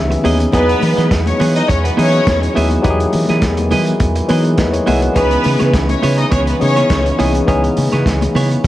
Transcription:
Already playing: C#2 C#3 D#3 E3 G#3 B3 C#4 D#4 F#4 G4 G#4 D#5 E5
0.11 muted clean electric guitar stroke, closed hi-hat
0.23 D#2 E3 B3 C#4 D#4 E4 G#4 D#5, open hi-hat, high conga
0.40 muted clean electric guitar stroke, closed hi-hat
0.52 E2 B2 F#3 B3 D#4 E4 G#4 B4 D#5, kick, closed hi-hat, muted conga, low conga
0.69 muted clean electric guitar stroke, closed hi-hat
0.81 E3, muted clean electric guitar stroke, open hi-hat, high conga
0.96 E3 B3 E4 G#4 D#5, snare, closed hi-hat, high conga
1.11 E2, muted clean electric guitar stroke, kick, snare, closed hi-hat
1.26 C#4 C#5, muted clean electric guitar stroke, closed hi-hat, high conga
1.40 E3 B3 E4 G#4 D#5, open hi-hat, muted conga, low conga
1.55 D#4 D#5, muted clean electric guitar stroke, closed hi-hat
1.69 E2 C#4 C#5, kick, closed hi-hat
1.84 B3 B4, muted clean electric guitar stroke, closed hi-hat
1.97 E3 F#3 B3 C#4 D#4 E4 G#4 C#5 D#5, open hi-hat, muted conga, high conga
2.13 muted clean electric guitar stroke, closed hi-hat
2.26 E2, muted clean electric guitar stroke, kick, snare, closed hi-hat, muted conga, high conga
2.42 muted clean electric guitar stroke, closed hi-hat
2.54 D#2 F#3 B3 D#4 E4 G#4 E5, open hi-hat, high conga
2.71 muted clean electric guitar stroke, closed hi-hat
2.82 E2 F#3 B3 D#4 E4 G4 G#4 A#4 D#5, kick, closed hi-hat, muted conga, low conga
2.90 G#4
3.00 muted clean electric guitar stroke, closed hi-hat
3.13 E3, muted clean electric guitar stroke, open hi-hat, high conga
3.28 E3 B3 E4 G#4 D#5, snare, closed hi-hat, high conga
3.42 E2, muted clean electric guitar stroke, kick, snare, closed hi-hat, muted conga
3.57 muted clean electric guitar stroke, closed hi-hat, high conga
3.71 E3 B3 E4 G#4 D#5, open hi-hat, low conga
3.86 muted clean electric guitar stroke, closed hi-hat
4.00 E2, kick, closed hi-hat, muted conga
4.15 muted clean electric guitar stroke, closed hi-hat
4.28 E3 F#3 B3 D#4 E4 G#4 B4 D#5, open hi-hat, muted conga, high conga
4.44 muted clean electric guitar stroke, closed hi-hat
4.57 E2 F#4 B4 D#5, muted clean electric guitar stroke, kick, snare, closed hi-hat, muted conga, high conga
4.73 G#4 C#5, muted clean electric guitar stroke, closed hi-hat
4.86 C2 B3 E4 G#4 A#4 D#5 E5 F#5, open hi-hat, muted conga, high conga
5.02 F#4 B4, muted clean electric guitar stroke, closed hi-hat
5.15 C#2 C#3 E3 B3 C#4 D#4 E4 G#4 B4 C#5, kick, closed hi-hat, muted conga, low conga
5.31 muted clean electric guitar stroke, closed hi-hat
5.44 C#3, muted clean electric guitar stroke, open hi-hat, high conga
5.60 C#3 B3 E4 G#4 C#5, snare, closed hi-hat, high conga
5.73 C#2, muted clean electric guitar stroke, kick, snare, closed hi-hat
5.89 C#4 C#5, muted clean electric guitar stroke, closed hi-hat, high conga
6.03 C#3 B3 E4 G#4 C#5, open hi-hat, muted conga, low conga
6.17 D#4 D#5, muted clean electric guitar stroke, closed hi-hat
6.31 C#2 B3 C#4 E4 G#4 C#5, kick, closed hi-hat, muted conga
6.47 B3 B4, muted clean electric guitar stroke, closed hi-hat
6.59 C#3 E3 B3 C#4 D#4 G#4 C#5, muted clean electric guitar stroke, open hi-hat, muted conga, high conga
6.76 B3 E4 G#4 C#5, closed hi-hat
6.90 C#2, muted clean electric guitar stroke, kick, snare, closed hi-hat, muted conga, high conga
7.06 muted clean electric guitar stroke, closed hi-hat
7.18 C2 E3 B3 C#4 D#4 E4 G#4 D#5, open hi-hat, high conga
7.34 muted clean electric guitar stroke, closed hi-hat
7.47 C#2 E3 B3 C#4 D#4 E4 G#4 C#5, kick, closed hi-hat, low conga
7.63 muted clean electric guitar stroke, closed hi-hat
7.77 C#3, muted clean electric guitar stroke, open hi-hat, high conga
7.92 C#3 B3 E4 G#4 C#5, snare, closed hi-hat, high conga
8.06 C#2, muted clean electric guitar stroke, kick, snare, closed hi-hat
8.21 muted clean electric guitar stroke, closed hi-hat, high conga
8.35 C#3 B3 E4 G#4 C#5, open hi-hat, low conga
8.50 muted clean electric guitar stroke, closed hi-hat
8.64 muted conga

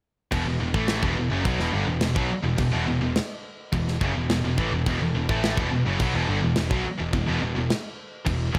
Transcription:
0.32 E1 E2 B2, kick, crash
0.46 E1 E2 B2
0.60 E1 E2 B2
0.74 A1 A2 E3 A3, kick
0.88 snare, crash
1.02 E1 E2 B2, kick
1.17 E1 E2 B2
1.31 F#1 F#2 C#3
1.45 B1 B2 F#3, kick, crash
1.58 E1 E2 B2, snare
1.73 G1 G2 D3
1.87 E1 E2 B2
2.01 E1 E2 B2, snare, crash
2.15 B1 B2 F#3, kick
2.30 muted distorted electric guitar stroke, muted picked electric bass stroke
2.44 E1 E2 B2
2.58 E1 E2 B2, kick, crash
2.72 E1 E2 B2
2.88 E1 E2 B2
3.02 E1 E2 B2
3.16 snare, crash
3.73 E1 E2 B2, kick, crash
3.88 snare
4.01 F#1 F#2 C#3, kick
4.15 E1 E2 B2
4.30 E1 E2 B2, snare, crash
4.44 E1 E2 B2
4.58 A1 A2 E3, kick
4.72 E1 E2 B2
4.86 E1 E2 B2, kick, crash
5.00 E1 E2 B2
5.14 E1 E2 B2
5.29 A1 A2 E3 A3, kick
5.44 snare, crash
5.57 E1 E2 B2, kick
5.71 E1 E2 B2
5.86 F#1 F#2 C#3
6.00 B1 B2 F#3, kick, crash
6.14 E1 E2 B2
6.28 G1 G2 D3
6.42 E1 E2 B2
6.56 E1 E2 B2, snare, crash
6.70 B1 B2 F#3, kick
6.84 muted distorted electric guitar stroke, muted picked electric bass stroke
6.98 E1 E2 B2
7.13 E1 E2 B2, kick, crash
7.26 E1 E2 B2
7.41 E1 E2 B2
7.55 E1 E2 B2
7.70 snare, crash
8.25 E1 E2 B2, kick, crash
8.53 F#1 F#2 C#3, kick

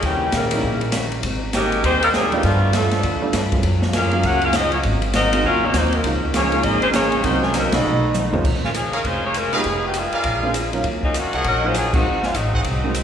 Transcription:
0.02 D#2 A#2 C#3 D#3 E3 G3 A#3 C#4 G4, kick, ride
0.06 E4
0.32 A#2 C#3 D#3 G3 A#3 C#4 E4, snare, hi-hat pedal, ride
0.36 A#4
0.51 G3 A#3 C#4 D#4 E4, ride
0.63 A#1 D#3 G3 C#4, kick
0.67 E4
0.81 ride
0.92 D#3 G3 C#4 E4, snare, hi-hat pedal, ride
1.12 ride
1.23 G#1 G#2 G3 C4 D#4, kick, ride
1.53 G#2 D#3 G3 G#3 A#3 C4 D#4 G4 A#4, snare, hi-hat pedal, ride
1.72 ride
1.83 D#2 G#2 D#3 G3 G#3 C4 D#4 G4 C5, kick, ride
2.03 G3 A#3 C4 D#4 A#4, ride
2.13 G#2 C3 D#3 G3 G#3 C4 D#4 G#4, snare, hi-hat pedal
2.32 C3 D#3 G3 G#3 A3 B3 C4 D4 F4 G4, ride
2.43 G2 B2 D3 F3 G3 A3 B3 D4 F4 A4, kick, ride
2.72 D3 F3 G3 A3 B3 D4 F4 A4, snare, hi-hat pedal, ride
2.91 snare, ride
3.03 D2 G3 B3 F4 A4, kick, ride
3.22 G3 A3 B3 D4 F4
3.33 G2 G3 B3 F4 A4, snare, hi-hat pedal, ride
3.52 F#3 G#3 A#3 C#4 F4, kick, ride
3.63 F#2 F#3 A#3 F4, kick, ride
3.67 G#4
3.82 snare
3.93 F#3 A#3 C#4 F4 G#4 A#4 F5, snare, hi-hat pedal, ride
4.11 F#3 G#3 A#3 C#4 F4, ride
4.23 C#2 F#3 A#3 C#4 F4 F#4 G#4 A#4 F#5, kick, ride
4.42 A#3 C#4 F4 G#4 A#4 F5, ride
4.53 F#3 A#3 C4 D#4 F4 G#4 D#5, snare, hi-hat pedal, ride
4.72 F3 A#3 C#4 F4 G#4 C#5, ride
4.83 G#1 G#2 F#3 A#3 C4, kick, ride
5.02 ride
5.13 G#2 F#3 A#3 C4 D#4 F#4 A#4 D#5, snare, hi-hat pedal, ride
5.33 G#3 A#3 C4 D#4 F#4, ride
5.44 D#2 G#2 F#3 A#3 C4 C#4 F4 F#4 A#4 F5, kick
5.65 A#3 C#4 D#4 F#4 C#5
5.73 D#2 G#2 D#3 F#3 A#3 C4 D#4 F#4 C5, snare, hi-hat pedal, ride
5.77 C4
5.93 D#3 F#3 A#3 C4 D#4 A#4, ride
6.04 C#2 C#3 F3 G#3 A#3 C#4 D#4 F4, kick, ride
6.33 C#3 F3 G#3 A#3 C#4 D#4 F4 G#4 C#5, snare, hi-hat pedal, ride
6.52 G#3 A#3 C#4 D#4 F4, ride
6.63 G#1 C#3 F3 G#3 A#3 D#4 F4 G#4 D#5, kick, ride
6.81 G#3 C4 C#4 F4 C5, ride
6.91 C#3 F3 G#3 A#3 C#4 F4 G#4 C#5, snare, hi-hat pedal, ride
6.96 A#3 D#4
7.12 ride
7.22 C2 C3 D#3 F#3 A#3 C4 D#4 F#4 C5, kick, ride
7.26 A#3 D#4
7.41 F3 G#3 A#3 C#4 G#4, snare
7.53 C3 D#3 F#3 A#3 C4 D#4 A#4, snare, hi-hat pedal, ride
7.70 C2 F#3 A3 B3 D#4 F#4 A4 D#5, snare, ride
7.83 B1 B2 F3 A3 D#4
8.14 B2 F3 A3 D#4, hi-hat pedal, high tom
8.32 F2 G#3 A#3 C4 C#4 F4, mid tom
8.44 A#1, kick, crash
8.55 snare
8.64 G#3 A#3 C#4 F4, snare
8.74 F3 A#3 C#4 G#4, hi-hat pedal, ride
8.92 G#3 C#4 F4 G#4 A#4 C#5 F5, muted upright bass stroke, ride
9.04 F1 G#3 C#4 F4 C5, kick, ride
9.25 A#3 F4 G#4 C#5
9.34 G#3 C#4 F4 A#4, hi-hat pedal, ride
9.53 F3 G#3 B3 D#4 F4 G4 G#4 B4 D#5 F5, ride
9.57 B3
9.64 F1, kick, ride
9.86 D#3 G#3 B3 G4
9.94 hi-hat pedal, ride
9.98 G#3 B3 D#4 F4
10.12 G#4 A#4 D5 F5, muted upright bass stroke, ride
10.24 A#1, kick, ride
10.43 G#3 A#3 C4 D4 F4
10.54 hi-hat pedal, ride
10.73 F#3 A#3 C#4 D#4 F4, ride
10.84 D#2, kick, ride
11.03 F#3 A#3 C#4 D#4, kick
11.14 D#3 A#3 C#4 F#4, hi-hat pedal, ride
11.24 F#2
11.33 C#2 F3 A#3 C#4 G#4 A#4 C#5 D#5 F#5, ride
11.44 A#1 F#3 C#4 D#4 A#4, kick, ride
11.63 F#3 G#3 A#3 C#4 D#4 F4 C5
11.74 F3 A#3 C#4 G#4, hi-hat pedal, ride
11.93 D#3 G#3 A#3 C4 D#4 F#4, kick, crash
12.05 G#1
12.23 F#3 A#3 C#4 F4, snare
12.34 A1 F#3 G#3 C4 D#4, hi-hat pedal, ride
12.53 G#4 C5 D#5 F#5, kick
12.64 C2, kick, ride
12.84 G#3 A#3 C4 D#4 F#4
12.94 hi-hat pedal, ride

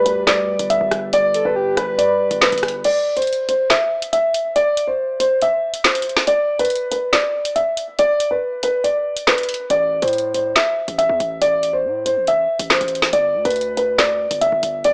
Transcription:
Already playing: D2 G3 G4 B4 D5
0.06 B4, closed hi-hat
0.27 D5, snare, clap, closed hi-hat
0.59 G1, closed hi-hat
0.70 E5, closed hi-hat
0.81 G1
0.91 G1, cross-stick, closed hi-hat
1.13 D5, closed hi-hat
1.34 A4, closed hi-hat
1.45 G1 B4
1.56 G4
1.77 B4, cross-stick, closed hi-hat
1.98 D5, closed hi-hat
2.31 G1, closed hi-hat
2.42 B4, snare, clap
2.52 G1, closed hi-hat
2.58 closed hi-hat
2.63 cross-stick, closed hi-hat
2.68 closed hi-hat
2.84 D5, closed hi-hat, crash
3.17 C5, closed hi-hat
3.22 closed hi-hat
3.27 closed hi-hat
3.33 closed hi-hat
3.49 C5, closed hi-hat
3.70 E5, snare, clap, closed hi-hat
4.02 closed hi-hat
4.13 E5, closed hi-hat
4.34 closed hi-hat
4.56 D5, closed hi-hat
4.77 closed hi-hat
4.87 C5
5.20 C5, closed hi-hat
5.42 E5, closed hi-hat
5.74 closed hi-hat
5.84 C5, snare, clap
5.95 closed hi-hat
6.02 closed hi-hat
6.09 closed hi-hat
6.17 snare
6.27 D5, closed hi-hat
6.59 B4, closed hi-hat
6.65 closed hi-hat
6.70 closed hi-hat
6.75 closed hi-hat
6.92 B4, closed hi-hat
7.13 D5, snare, clap, closed hi-hat
7.45 closed hi-hat
7.56 E5, closed hi-hat
7.77 closed hi-hat
7.99 D5, closed hi-hat
8.20 closed hi-hat
8.31 B4
8.63 B4, closed hi-hat
8.84 D5, closed hi-hat
9.17 closed hi-hat
9.27 B4, snare, clap
9.38 closed hi-hat
9.43 closed hi-hat
9.49 closed hi-hat
9.54 closed hi-hat
9.70 A1 D5, closed hi-hat
10.02 A2 C5, closed hi-hat
10.08 closed hi-hat
10.13 closed hi-hat
10.18 closed hi-hat
10.34 C5, closed hi-hat
10.56 E5, snare, clap, closed hi-hat
10.88 A1, closed hi-hat
10.98 E5, closed hi-hat
11.09 E2
11.20 A1, closed hi-hat
11.42 D5, closed hi-hat
11.63 closed hi-hat
11.73 C5
11.84 A2
12.06 C5, closed hi-hat
12.17 A1
12.27 E5, closed hi-hat
12.59 A1, closed hi-hat
12.70 C5, snare, clap
12.81 A1, closed hi-hat
12.88 closed hi-hat
12.95 closed hi-hat
13.02 snare
13.13 G1 D5, closed hi-hat
13.34 D2
13.45 D2 B4, closed hi-hat
13.50 closed hi-hat
13.56 closed hi-hat
13.61 closed hi-hat
13.77 B4, closed hi-hat
13.98 D5, snare, clap, closed hi-hat
14.31 G1, closed hi-hat
14.41 E5, closed hi-hat
14.52 G1
14.63 G1, closed hi-hat
14.84 D5, closed hi-hat

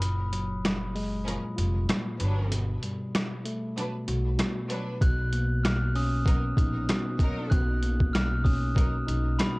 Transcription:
Already playing: F#1
0.01 A#2, closed hi-hat
0.32 F#3, closed hi-hat
0.65 cross-stick, snare, closed hi-hat
0.95 G#3, open hi-hat
1.26 A#2 F3 C#4 A#4, closed hi-hat
1.56 F1 F4, closed hi-hat
1.88 A#2, cross-stick, snare, closed hi-hat
2.20 G1 F#3 D4 B4, closed hi-hat
2.50 B2, closed hi-hat
2.83 G3, closed hi-hat
3.15 cross-stick, snare, closed hi-hat
3.45 A3, closed hi-hat
3.77 B2 F#3 D4 B4, closed hi-hat
4.08 B1 F#4, closed hi-hat
4.38 B2, cross-stick, snare, closed hi-hat
4.70 F#3 D4 B4, closed hi-hat
5.01 B1 B2 F#6, kick, closed hi-hat
5.33 A#3, closed hi-hat
5.64 F6, cross-stick, snare, closed hi-hat
5.95 C#4 D#6, open hi-hat
6.26 F#3 B3 D#4 A#4, kick, closed hi-hat
6.57 A#1 D#4, kick, closed hi-hat
6.89 B2, cross-stick, snare, closed hi-hat
7.19 F#3 D#4 A#4, kick, closed hi-hat
7.50 B1 B2 F#6, kick, closed hi-hat
7.83 A#3, closed hi-hat
8.00 kick
8.13 F6, cross-stick, snare, closed hi-hat
8.44 C#4 D#6, kick, open hi-hat
8.75 B2 F#3 D#4 A#4, kick, closed hi-hat
9.07 B1 D#4, closed hi-hat
9.39 B2 B5, cross-stick, snare, closed hi-hat

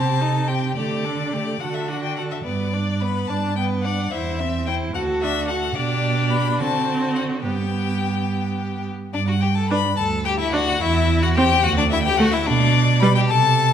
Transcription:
Already playing: C3 C4 G4 A5
0.20 D#4 A4
0.48 C4 G4 G5
0.76 D3 A3 G4 D5
1.05 D4 A4
1.33 A3 G4
1.60 D3 F#4 A4 F#5
1.74 E5
1.88 D4 F#4 F#5
2.03 G5
2.16 F#4 A4 F#5
2.31 E5
2.44 G2 B3 B4 D5
2.73 D4 D5
3.00 B3 B4 B5
3.27 G2 D4 D5 A5
3.56 B3 B4 G5
3.83 D4 D5 F#5
4.11 E2 E4 C5 E5
4.40 C4 E5
4.66 E4 C5 G5
4.94 D2 F#4 A4 F#5
5.21 D4 F#4 E5
5.48 F#4 A4 F#5
5.75 B2 D4 G4 D5
6.31 B5
6.59 D3 C4 F#4 A5
7.15 F#5
7.44 G2 B3 G4 G5
9.14 G2 D4 D5
9.28 F#4 F#5
9.41 G4 G5
9.55 A4 A5
9.69 D4 B4 B5
9.97 D2 A4 A5
10.25 G4 G5
10.39 E4 E5
10.53 D4 F#4 F#5
10.81 E2 E4 E5
11.23 F#4 F#5
11.36 C4 G4 G5
11.63 D2 F#4 F#5
11.77 D4 D5
11.91 E4 E5
12.03 G4 G5
12.18 A3 F#4 F#5
12.31 E4 E5
12.46 B2 D4 D5
13.00 G3 B4 B5
13.15 G4 G5
13.28 C3 A4 A5

